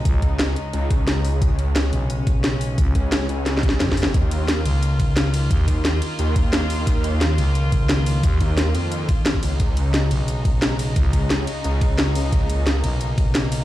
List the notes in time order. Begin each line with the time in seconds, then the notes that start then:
Already playing: C#3 G#3 D#4
0.05 C#2, kick, closed hi-hat
0.22 C#2, kick, closed hi-hat
0.39 snare, closed hi-hat
0.56 closed hi-hat
0.73 C#2, closed hi-hat
0.90 C#2, kick, closed hi-hat
1.08 snare, closed hi-hat
1.25 open hi-hat
1.42 C#2 C#4, kick, closed hi-hat
1.59 closed hi-hat
1.76 snare, closed hi-hat
1.93 B1, closed hi-hat
2.10 closed hi-hat
2.27 kick, closed hi-hat
2.44 snare, closed hi-hat
2.61 open hi-hat
2.78 C#2, kick, closed hi-hat
2.95 C#2, kick, closed hi-hat
3.12 snare, closed hi-hat
3.29 C#2, closed hi-hat
3.46 snare, closed hi-hat
3.58 snare
3.63 kick, closed hi-hat
3.69 snare
3.80 F2, snare, closed hi-hat
3.89 kick, snare
3.97 open hi-hat
4.03 snare
4.14 D#2 D#3 A#3 F4, kick, closed hi-hat
4.31 closed hi-hat, ride bell
4.48 snare, closed hi-hat
4.66 C#2, closed hi-hat, ride bell
4.83 closed hi-hat
5.00 kick, closed hi-hat, ride bell
5.17 snare, closed hi-hat
5.34 open hi-hat, ride bell
5.51 D#2, kick, closed hi-hat
5.68 D#2, kick, closed hi-hat, ride bell
5.85 snare, closed hi-hat
6.02 closed hi-hat, ride bell
6.19 D#2, closed hi-hat
6.36 D#2, kick, closed hi-hat, ride bell
6.53 snare, closed hi-hat
6.70 open hi-hat, ride bell
6.87 D#2, kick, closed hi-hat
7.04 closed hi-hat, ride bell
7.21 snare, closed hi-hat
7.38 C#2, closed hi-hat, ride bell
7.55 closed hi-hat
7.72 kick, closed hi-hat, ride bell
7.89 snare, closed hi-hat
8.06 open hi-hat, ride bell
8.23 D#2, kick, closed hi-hat
8.40 D#2, kick, closed hi-hat, ride bell
8.58 snare, closed hi-hat
8.75 F2, closed hi-hat, ride bell
8.92 closed hi-hat
9.09 kick, closed hi-hat, ride bell
9.26 snare, closed hi-hat
9.34 kick
9.43 C#2, open hi-hat, ride bell
9.60 C#2 C#3 G#3 D#4, kick, closed hi-hat
9.77 closed hi-hat, ride bell
9.94 snare, closed hi-hat
10.11 B1, closed hi-hat, ride bell
10.28 closed hi-hat
10.45 kick, closed hi-hat, ride bell
10.62 snare, closed hi-hat
10.79 open hi-hat, ride bell
10.96 C#2, kick, closed hi-hat
11.13 C#2, kick, closed hi-hat, ride bell
11.30 snare, closed hi-hat
11.47 closed hi-hat, ride bell
11.64 C#2, closed hi-hat
11.81 C#2, kick, closed hi-hat, ride bell
11.98 snare, closed hi-hat
12.15 open hi-hat, ride bell
12.32 C#2 A#3, kick, closed hi-hat
12.50 closed hi-hat, ride bell
12.67 snare, closed hi-hat
12.84 B1, closed hi-hat, ride bell
13.01 closed hi-hat
13.18 kick, closed hi-hat, ride bell
13.35 snare, closed hi-hat
13.52 open hi-hat, ride bell